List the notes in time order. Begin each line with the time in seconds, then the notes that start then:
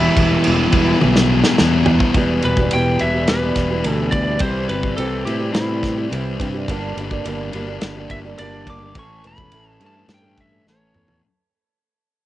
Already playing: E2 B2 E3 G3 B3 E4 E5
0.17 E1, kick, crash
0.44 E1, crash
0.72 E1 E2 B2 E3 G3 B3 E4, kick, crash
0.76 E3
1.01 B1, high tom
1.16 snare
1.44 snare
1.57 E2 E3 G3 B3 E4, snare
1.86 E3 G3 B3 E4, floor tom
2.00 kick
2.14 E1 E2 B2 E3 G3 B3 E4 G4, kick, ride
2.42 E1 E3 G3 B3 G4 B4, ride
2.57 G3 B3 G4, kick
2.61 E3
2.71 E1 E2 B2 E3 G3 G5, ride
2.75 B3 G4
2.99 E1 E3 G3 B3 E4 G4 E5, ride
3.14 E3 G3 B3 G4
3.27 E1 E3 G3 B3 G4 B4, snare, ride
3.43 E3 G3 B3 G4
3.56 E1, kick, snare, ride
3.70 E3 G3 B3 G4
3.84 D2 E2 B2 E3 G3 B3 G4, ride
3.91 A4
4.11 E3 G3 B3 D5, kick, ride
4.16 G4
4.27 E3 G3 B3 G4
4.39 C2 C3 E3 G3 C4 E4 C5, kick, ride
4.43 G4
4.69 G1 E3 G3 C4 G4 B4, ride
4.83 G3 C4 G4, kick
4.97 C2 C3 E3 G3 C4 G4 A4, ride
5.25 A2 C3 E3 G3 C4 E4 G4, ride
5.29 G4
5.40 G3 C4 G4
5.53 A2 E3 G3 C4 E4, snare, ride
5.57 G4
5.68 G3 C4 G4
5.83 kick, snare, ride
5.97 G3 C4 G4
6.11 C2 C3 E3 G3 C4 G4, ride
6.38 G2 E3 G3 C4 G4, kick, ride
6.54 G3 C4 G4
6.68 G1 G2 D3 G3 A#3 D4 G4, kick, ride
6.97 G1 G3 A#3 D4 G4, ride
7.11 G3 A#3 D4 G4, kick
7.25 G1 G2 D3 G3 A#3 D4 G4, ride
7.53 G1 G2 D3 G3 A#3 D4 G4, ride
7.67 G3 A#3 D4 G4
7.81 G3 A#3 D4 G4, snare, ride
7.97 G3 A#3 D4 G4
8.10 G1 E5, kick, ride
8.25 G3 A#3 D4 G4
8.38 G1 G2 D3 G3 A#3 D4 G4 D5, ride
8.67 G3 A#3 D4 G4 D6, kick, ride
8.81 G3 A#3 D4 G4
8.95 A1 A2 E3 A3 C#4 E4 A4, kick, ride
8.99 C#6
9.24 E1 E3 A3 C#4 A4 B5, ride
9.38 A3 C#4 A4, kick
9.52 A1 A2 E3 A3 C#4 A4, ride
9.71 A5
9.80 G2 A2 E3 A3 C#4 E4 A4, ride
9.86 A5
9.94 A3 C#4 A4
10.08 G2 E3 A3 C#4 A4, snare, ride
10.14 G5
10.23 A3 C#4 A4
10.38 E5, kick, ride
10.52 A3 C#4 A4
10.67 A1 A2 E3 A3 C#4 A4 C#5, snare
10.94 E2 E3 A3 C#4 A4, mid tom
11.08 A3 C#4 A4, floor tom